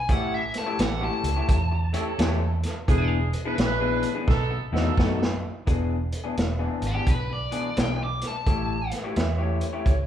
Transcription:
0.09 A1 A3 C#4 E4 G4 A4 C#5 F#5, kick, closed hi-hat
0.34 E5
0.54 snare, closed hi-hat
0.58 A5
0.66 A3 C#4 E4 G4 A4 C#5
0.79 A1 F#5, muted clean electric guitar stroke, snare, closed hi-hat
1.01 A3 E4 G4 C#5 A5
1.23 C#2, closed hi-hat
1.36 A3 E4 G4 C#5
1.49 E2, kick, closed hi-hat
1.71 muted clean electric guitar stroke
1.93 A3 C#4 E4 G4 A4 C#5, closed hi-hat
2.18 E2 A3 E4 G4 C#5, snare, closed hi-hat
2.41 muted clean electric guitar stroke
2.63 snare, closed hi-hat
2.88 E1 E3 B3 D4 E4 G#4, kick, closed hi-hat
3.33 closed hi-hat
3.45 E3 B3 D4 E4 G#4 B4
3.58 A#1, muted clean electric guitar stroke, snare, closed hi-hat
3.81 E3 B3 D4 G#4
4.03 closed hi-hat
4.15 E3 B3 D4 G#4
4.28 B1 B3 D#4 A4, kick, snare
4.51 muted clean electric guitar stroke
4.72 E2 B2 A3 B3 D#4 F#4 A4, snare
4.97 F#2 B2 A3 D#4 F#4, kick, snare
5.21 muted clean electric guitar stroke, snare
5.67 E1 E3 B3 D4 G#4, kick, closed hi-hat
6.12 closed hi-hat
6.24 E3 B3 D4 G#4
6.37 E1, muted clean electric guitar stroke, snare, closed hi-hat
6.59 E3 B3 D4 G#4
6.82 G#1, closed hi-hat
6.87 G4
6.94 E3 B3 D4 G#4
7.06 B1 B4, kick, closed hi-hat
7.30 D5, muted clean electric guitar stroke
7.51 E3 B3 D4 G#4, closed hi-hat
7.76 B1 E3 B3 D4 G#4 G5, snare, closed hi-hat
7.99 muted clean electric guitar stroke
8.04 D6
8.21 snare, closed hi-hat
8.27 A5
8.46 A1 A3 E4 G4 C#5, kick, closed hi-hat
8.91 snare, closed hi-hat
9.04 A3 E4 G4 C#5
9.16 E2 E5, muted clean electric guitar stroke, snare, closed hi-hat
9.38 A3 E4 G4 C#5
9.61 closed hi-hat
9.73 A3 E4 G4 C#5
9.86 C#2 C#5, kick, closed hi-hat

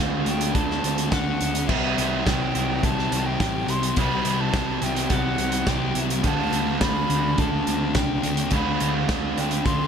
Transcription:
Already playing: D2 D3 A3 C4 D4 F#4 A4
0.00 G3
0.26 D2 D4 G5, closed hi-hat
0.41 closed hi-hat
0.54 D2 D3 A3 D4 A4 A5, kick, closed hi-hat
0.71 snare
0.84 D2 C4, closed hi-hat
0.98 closed hi-hat
1.10 D2 D3 A3 D4 A4 F#5, kick, snare, closed hi-hat
1.40 D2 A3 D4, closed hi-hat
1.55 closed hi-hat
1.68 C2 C3 E3 G3 C4 E5, kick, crash
1.72 C4 E4
1.98 C2 G3 C4, closed hi-hat
2.26 C2 G3 G5, kick, snare, closed hi-hat
2.54 C2 E4, closed hi-hat
2.83 C2 C3 G3 C4 G4 A5, kick, closed hi-hat
2.98 snare
3.12 C2, closed hi-hat
3.26 G5
3.39 A1 C3 G3 C4 G4, kick, snare, closed hi-hat
3.67 C2 G3 C4 E4 C6, closed hi-hat
3.83 closed hi-hat
3.96 C2 C3 E3 G3 C4 B5, kick, closed hi-hat
4.01 E4
4.25 C2 G3 C4, closed hi-hat
4.41 A5
4.53 C2 G3, kick, snare, closed hi-hat
4.82 C2 E4 G5, closed hi-hat
4.96 closed hi-hat
5.10 C2 C3 G3 C4 G4 F#5, kick, closed hi-hat
5.38 C2, closed hi-hat
5.52 closed hi-hat
5.67 C2 C3 G3 C4 G4 G5, kick, snare, closed hi-hat
5.94 C2 G3 C4 E4, closed hi-hat
6.10 closed hi-hat
6.22 D2 D3 G3 A3 C4 D4 A5, kick, closed hi-hat
6.27 F#4
6.51 D2 A3 C4 D4, closed hi-hat
6.81 D2 G3 B5, kick, snare, closed hi-hat
7.10 D2 D4, closed hi-hat
7.36 D2 D3 A3 D4 A4 A5, kick, closed hi-hat
7.67 D2 C4, closed hi-hat
7.95 C2 D3 A3 D4 A4 G5, kick, snare, closed hi-hat
8.22 D2 A3 D4, closed hi-hat
8.37 closed hi-hat
8.51 D2 D3 G3 A3 D4 B5, kick, closed hi-hat
8.55 C4 F#4
8.80 D2 A3 C4 D4, closed hi-hat
9.09 D2 G3, kick, snare, closed hi-hat
9.37 D2 D4 G5, closed hi-hat
9.51 closed hi-hat
9.65 D2 D3 A3 D4 A4 C6, kick, closed hi-hat

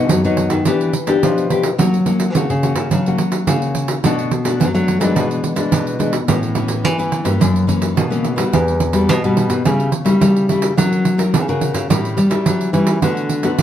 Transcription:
Already playing: B2 B3 D#4 F#4
0.09 F#2 F#3, pandeiro
0.24 F#3 B3 D#4 F#4, pandeiro
0.37 pandeiro
0.50 D#3, pandeiro
0.65 E3 B3 D4 G4, pandeiro
0.81 pandeiro
0.93 pandeiro
1.07 B3 D4 G4, pandeiro
1.23 B2 F3, pandeiro
1.38 pandeiro
1.50 B3 D4 G4, pandeiro
1.63 pandeiro
1.78 F#3 A#3 C#4 F#4, pandeiro
1.94 pandeiro
2.06 A#3 C#4 F#4, pandeiro
2.20 pandeiro
2.35 C#3 A#3 C#4 F#4, pandeiro
2.50 C#3, pandeiro
2.63 A#3 C#4 F#4, pandeiro
2.76 C#3, pandeiro
2.91 C#3 F#3, pandeiro
3.06 A#3 C#4 F#4, pandeiro
3.18 pandeiro
3.32 pandeiro
3.47 C#3 A#3 C#4 F#4, pandeiro
3.62 pandeiro
3.75 pandeiro
3.88 pandeiro
4.04 B2 A3 D4 F#4, pandeiro
4.19 pandeiro
4.31 pandeiro
4.44 A3 D4 F#4, pandeiro
4.60 F#2 F#3, pandeiro
4.74 F#3 A3 D4 F#4, pandeiro
4.88 pandeiro
5.00 E3 F#3 G#3 D4, pandeiro
5.16 B2, pandeiro
5.31 pandeiro
5.44 pandeiro
5.56 E3 G#3 D4, pandeiro
5.71 B2, pandeiro
5.87 pandeiro
5.99 E3 G#3 D4, pandeiro
6.13 pandeiro
6.28 A2 E3 B3 C#4, pandeiro
6.43 pandeiro
6.55 E3 B3 C#4, pandeiro
6.68 pandeiro
6.84 E3, pandeiro
6.98 E3 B3 C#4, pandeiro
7.12 pandeiro
7.25 G2 E3 A#3 C#4, pandeiro
7.40 F#2, pandeiro
7.56 pandeiro
7.67 E3 A#3 C#4, pandeiro
7.82 pandeiro
7.96 B2 C#3, pandeiro
8.10 E3 A#3 C#4, pandeiro
8.24 pandeiro
8.36 G3 B3 F#4, pandeiro
8.52 E2 E3, pandeiro
8.68 pandeiro
8.80 pandeiro
8.93 G3 B3 F#4, pandeiro
9.09 B2, pandeiro
9.24 B2 G3 B3 F#4, pandeiro
9.37 pandeiro
9.50 B2, pandeiro
9.65 C#3 G3 C#4 E4, pandeiro
9.80 pandeiro
9.92 pandeiro
10.05 G3 C#4 E4, pandeiro
10.21 C#3 G3, pandeiro
10.36 pandeiro
10.49 G3 C#4 E4, pandeiro
10.62 pandeiro
10.77 F#3 C#4 F#4 A#4, pandeiro
10.93 pandeiro
11.05 pandeiro
11.18 C#4 F#4 A#4, pandeiro
11.34 C#3, pandeiro
11.48 C#3 C#4 F#4 A#4, pandeiro
11.61 pandeiro
11.74 C#3, pandeiro
11.89 A2 G3 C#4 E4, pandeiro
12.05 pandeiro
12.17 G3, pandeiro
12.30 G3 C#4 E4, pandeiro
12.46 E3 F#3, pandeiro
12.61 pandeiro
12.73 E3 G3 C#4 E4, pandeiro
12.87 pandeiro
13.02 D3 A3 B3 F#4, pandeiro
13.17 pandeiro
13.29 pandeiro
13.43 A3 B3 F#4, pandeiro
13.58 A2 D3, pandeiro

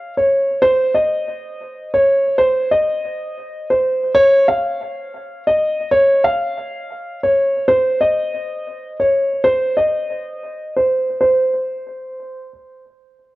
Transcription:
Already playing: F5
0.17 C#5
0.62 C5
0.94 D#5
1.94 C#5
2.38 C5
2.71 D#5
3.70 C5
4.15 C#5
4.48 F5
5.47 D#5
5.91 C#5
6.24 F5
7.23 C#5
7.68 C5
8.01 D#5
9.00 C#5
9.44 C5
9.77 D#5
10.76 C5
11.20 C5

